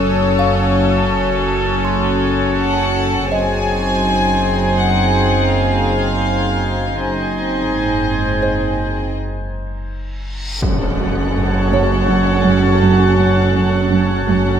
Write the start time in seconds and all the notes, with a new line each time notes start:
Already playing: F#1 F#2 C#4 F#4 A4 C#5 A5 C#6 D#6 E6
0.39 F5
1.55 F6
1.85 C6
2.58 F#5
3.31 F#1 F#2 C4 D#4 G#4 C5 D#5 G#5
4.77 F#5
5.49 F5
6.95 F#1 F#2 C4 D#4 G#4 C5 D#5 G#5, reverse cymbal
7.69 G#2
8.43 C5
10.61 F#1 F#2 C#4 F#4 A4 C#5 F#5 A5 C#6 F#6, impact
10.99 F#3
11.35 F#2
11.72 F#2 C#5
12.08 F#2
12.44 F#2
12.82 F#2
13.18 F#2
13.54 F#2
13.91 F#2
14.28 F#1 F#2 C#4 F#4 A4 F#5 A5